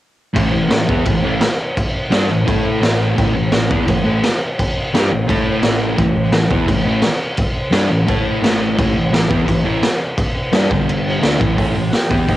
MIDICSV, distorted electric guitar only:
0, 0, Header, 1, 2, 480
1, 0, Start_track
1, 0, Tempo, 350467
1, 504, Time_signature, 4, 2, 24, 8
1, 16941, End_track
2, 0, Start_track
2, 0, Title_t, "Distorted electric guitar"
2, 0, Program_c, 0, 30
2, 466, Note_on_c, 0, 45, 81
2, 480, Note_on_c, 0, 52, 81
2, 503, Note_on_c, 0, 57, 108
2, 704, Note_off_c, 0, 45, 0
2, 709, Note_off_c, 0, 52, 0
2, 721, Note_on_c, 0, 45, 61
2, 726, Note_on_c, 0, 52, 66
2, 737, Note_off_c, 0, 57, 0
2, 925, Note_off_c, 0, 45, 0
2, 928, Note_off_c, 0, 52, 0
2, 948, Note_on_c, 0, 45, 63
2, 960, Note_on_c, 0, 52, 75
2, 1159, Note_off_c, 0, 45, 0
2, 1165, Note_off_c, 0, 52, 0
2, 1191, Note_on_c, 0, 52, 93
2, 1210, Note_on_c, 0, 59, 98
2, 1228, Note_on_c, 0, 64, 96
2, 1442, Note_off_c, 0, 52, 0
2, 1451, Note_off_c, 0, 59, 0
2, 1454, Note_on_c, 0, 45, 62
2, 1458, Note_on_c, 0, 52, 69
2, 1461, Note_off_c, 0, 64, 0
2, 1653, Note_off_c, 0, 45, 0
2, 1655, Note_off_c, 0, 52, 0
2, 1685, Note_on_c, 0, 45, 94
2, 1703, Note_on_c, 0, 52, 102
2, 1718, Note_on_c, 0, 57, 110
2, 1930, Note_off_c, 0, 45, 0
2, 1939, Note_off_c, 0, 52, 0
2, 1946, Note_off_c, 0, 57, 0
2, 2878, Note_on_c, 0, 55, 97
2, 2889, Note_on_c, 0, 62, 97
2, 2910, Note_on_c, 0, 67, 97
2, 3124, Note_off_c, 0, 55, 0
2, 3130, Note_on_c, 0, 45, 63
2, 3130, Note_on_c, 0, 52, 73
2, 3134, Note_off_c, 0, 62, 0
2, 3144, Note_off_c, 0, 67, 0
2, 3333, Note_off_c, 0, 45, 0
2, 3333, Note_off_c, 0, 52, 0
2, 3354, Note_on_c, 0, 57, 86
2, 3362, Note_on_c, 0, 64, 89
2, 3377, Note_on_c, 0, 69, 101
2, 3842, Note_on_c, 0, 45, 79
2, 3847, Note_off_c, 0, 57, 0
2, 3851, Note_off_c, 0, 64, 0
2, 3852, Note_on_c, 0, 52, 84
2, 3858, Note_off_c, 0, 69, 0
2, 3875, Note_on_c, 0, 57, 95
2, 4305, Note_off_c, 0, 45, 0
2, 4321, Note_on_c, 0, 45, 79
2, 4322, Note_off_c, 0, 52, 0
2, 4332, Note_off_c, 0, 57, 0
2, 4338, Note_on_c, 0, 52, 105
2, 4348, Note_on_c, 0, 57, 96
2, 4560, Note_off_c, 0, 45, 0
2, 4560, Note_off_c, 0, 52, 0
2, 4576, Note_on_c, 0, 45, 67
2, 4577, Note_on_c, 0, 52, 65
2, 4584, Note_off_c, 0, 57, 0
2, 4777, Note_off_c, 0, 45, 0
2, 4778, Note_off_c, 0, 52, 0
2, 4825, Note_on_c, 0, 45, 65
2, 4826, Note_on_c, 0, 52, 64
2, 5022, Note_off_c, 0, 45, 0
2, 5023, Note_off_c, 0, 52, 0
2, 5057, Note_on_c, 0, 52, 83
2, 5073, Note_on_c, 0, 59, 100
2, 5085, Note_on_c, 0, 64, 108
2, 5286, Note_off_c, 0, 52, 0
2, 5297, Note_off_c, 0, 59, 0
2, 5302, Note_on_c, 0, 45, 53
2, 5302, Note_on_c, 0, 52, 67
2, 5313, Note_off_c, 0, 64, 0
2, 5501, Note_off_c, 0, 45, 0
2, 5501, Note_off_c, 0, 52, 0
2, 5532, Note_on_c, 0, 45, 97
2, 5550, Note_on_c, 0, 52, 90
2, 5562, Note_on_c, 0, 57, 116
2, 5777, Note_off_c, 0, 45, 0
2, 5786, Note_off_c, 0, 52, 0
2, 5791, Note_off_c, 0, 57, 0
2, 6759, Note_on_c, 0, 55, 92
2, 6768, Note_on_c, 0, 62, 93
2, 6783, Note_on_c, 0, 67, 94
2, 6983, Note_off_c, 0, 55, 0
2, 6984, Note_on_c, 0, 45, 69
2, 6988, Note_on_c, 0, 52, 73
2, 6995, Note_off_c, 0, 62, 0
2, 7002, Note_off_c, 0, 67, 0
2, 7182, Note_off_c, 0, 45, 0
2, 7184, Note_off_c, 0, 52, 0
2, 7216, Note_on_c, 0, 57, 92
2, 7235, Note_on_c, 0, 64, 91
2, 7251, Note_on_c, 0, 69, 94
2, 7698, Note_off_c, 0, 57, 0
2, 7702, Note_on_c, 0, 45, 78
2, 7708, Note_off_c, 0, 64, 0
2, 7716, Note_off_c, 0, 69, 0
2, 7717, Note_on_c, 0, 52, 80
2, 7721, Note_on_c, 0, 57, 96
2, 8156, Note_off_c, 0, 45, 0
2, 8165, Note_off_c, 0, 52, 0
2, 8173, Note_on_c, 0, 45, 88
2, 8181, Note_off_c, 0, 57, 0
2, 8182, Note_on_c, 0, 52, 98
2, 8198, Note_on_c, 0, 57, 88
2, 8417, Note_off_c, 0, 45, 0
2, 8421, Note_off_c, 0, 52, 0
2, 8429, Note_off_c, 0, 57, 0
2, 8435, Note_on_c, 0, 45, 67
2, 8437, Note_on_c, 0, 52, 74
2, 8627, Note_off_c, 0, 45, 0
2, 8628, Note_off_c, 0, 52, 0
2, 8669, Note_on_c, 0, 45, 59
2, 8676, Note_on_c, 0, 52, 62
2, 8864, Note_off_c, 0, 45, 0
2, 8867, Note_off_c, 0, 52, 0
2, 8890, Note_on_c, 0, 52, 83
2, 8909, Note_on_c, 0, 59, 87
2, 8915, Note_on_c, 0, 64, 93
2, 9126, Note_off_c, 0, 52, 0
2, 9136, Note_off_c, 0, 59, 0
2, 9139, Note_on_c, 0, 45, 58
2, 9142, Note_on_c, 0, 52, 72
2, 9147, Note_off_c, 0, 64, 0
2, 9338, Note_off_c, 0, 45, 0
2, 9340, Note_off_c, 0, 52, 0
2, 9377, Note_on_c, 0, 45, 96
2, 9395, Note_on_c, 0, 52, 105
2, 9409, Note_on_c, 0, 57, 102
2, 9618, Note_off_c, 0, 45, 0
2, 9627, Note_off_c, 0, 52, 0
2, 9634, Note_off_c, 0, 57, 0
2, 10558, Note_on_c, 0, 55, 93
2, 10574, Note_on_c, 0, 62, 99
2, 10589, Note_on_c, 0, 67, 100
2, 10808, Note_off_c, 0, 55, 0
2, 10815, Note_off_c, 0, 62, 0
2, 10820, Note_on_c, 0, 45, 63
2, 10823, Note_off_c, 0, 67, 0
2, 10824, Note_on_c, 0, 52, 72
2, 11018, Note_off_c, 0, 45, 0
2, 11020, Note_off_c, 0, 52, 0
2, 11046, Note_on_c, 0, 57, 88
2, 11064, Note_on_c, 0, 64, 98
2, 11073, Note_on_c, 0, 69, 94
2, 11529, Note_on_c, 0, 45, 86
2, 11531, Note_off_c, 0, 57, 0
2, 11540, Note_off_c, 0, 64, 0
2, 11545, Note_off_c, 0, 69, 0
2, 11547, Note_on_c, 0, 52, 82
2, 11555, Note_on_c, 0, 57, 84
2, 11992, Note_off_c, 0, 45, 0
2, 12004, Note_off_c, 0, 52, 0
2, 12009, Note_on_c, 0, 45, 80
2, 12019, Note_off_c, 0, 57, 0
2, 12021, Note_on_c, 0, 52, 84
2, 12036, Note_on_c, 0, 57, 110
2, 12229, Note_off_c, 0, 45, 0
2, 12233, Note_off_c, 0, 52, 0
2, 12246, Note_on_c, 0, 45, 64
2, 12250, Note_on_c, 0, 52, 70
2, 12265, Note_off_c, 0, 57, 0
2, 12449, Note_off_c, 0, 45, 0
2, 12451, Note_off_c, 0, 52, 0
2, 12497, Note_on_c, 0, 45, 63
2, 12504, Note_on_c, 0, 52, 70
2, 12695, Note_off_c, 0, 45, 0
2, 12698, Note_off_c, 0, 52, 0
2, 12726, Note_on_c, 0, 52, 94
2, 12744, Note_on_c, 0, 59, 95
2, 12761, Note_on_c, 0, 64, 95
2, 12951, Note_off_c, 0, 52, 0
2, 12962, Note_off_c, 0, 59, 0
2, 12967, Note_on_c, 0, 45, 57
2, 12968, Note_on_c, 0, 52, 70
2, 12987, Note_off_c, 0, 64, 0
2, 13170, Note_off_c, 0, 45, 0
2, 13170, Note_off_c, 0, 52, 0
2, 13205, Note_on_c, 0, 45, 102
2, 13218, Note_on_c, 0, 52, 94
2, 13221, Note_on_c, 0, 57, 101
2, 13449, Note_off_c, 0, 45, 0
2, 13455, Note_off_c, 0, 52, 0
2, 13457, Note_off_c, 0, 57, 0
2, 14408, Note_on_c, 0, 55, 87
2, 14432, Note_on_c, 0, 62, 89
2, 14441, Note_on_c, 0, 67, 98
2, 14644, Note_on_c, 0, 43, 84
2, 14650, Note_off_c, 0, 55, 0
2, 14656, Note_on_c, 0, 50, 89
2, 14662, Note_off_c, 0, 62, 0
2, 14666, Note_off_c, 0, 67, 0
2, 14672, Note_on_c, 0, 55, 103
2, 15341, Note_off_c, 0, 50, 0
2, 15358, Note_on_c, 0, 50, 84
2, 15367, Note_off_c, 0, 43, 0
2, 15371, Note_off_c, 0, 55, 0
2, 15376, Note_on_c, 0, 57, 91
2, 15388, Note_on_c, 0, 62, 93
2, 15604, Note_off_c, 0, 50, 0
2, 15613, Note_on_c, 0, 45, 87
2, 15614, Note_off_c, 0, 57, 0
2, 15619, Note_off_c, 0, 62, 0
2, 15626, Note_on_c, 0, 52, 97
2, 15637, Note_on_c, 0, 57, 100
2, 15822, Note_off_c, 0, 45, 0
2, 15837, Note_off_c, 0, 52, 0
2, 15838, Note_on_c, 0, 45, 90
2, 15849, Note_off_c, 0, 57, 0
2, 15853, Note_on_c, 0, 52, 86
2, 15865, Note_on_c, 0, 57, 90
2, 16075, Note_off_c, 0, 45, 0
2, 16087, Note_off_c, 0, 52, 0
2, 16092, Note_on_c, 0, 45, 59
2, 16098, Note_off_c, 0, 57, 0
2, 16104, Note_on_c, 0, 52, 69
2, 16291, Note_off_c, 0, 45, 0
2, 16297, Note_off_c, 0, 52, 0
2, 16562, Note_on_c, 0, 52, 79
2, 16578, Note_on_c, 0, 59, 97
2, 16589, Note_on_c, 0, 64, 96
2, 16806, Note_off_c, 0, 52, 0
2, 16811, Note_on_c, 0, 51, 82
2, 16815, Note_off_c, 0, 59, 0
2, 16821, Note_off_c, 0, 64, 0
2, 16826, Note_on_c, 0, 58, 90
2, 16844, Note_on_c, 0, 63, 84
2, 16941, Note_off_c, 0, 51, 0
2, 16941, Note_off_c, 0, 58, 0
2, 16941, Note_off_c, 0, 63, 0
2, 16941, End_track
0, 0, End_of_file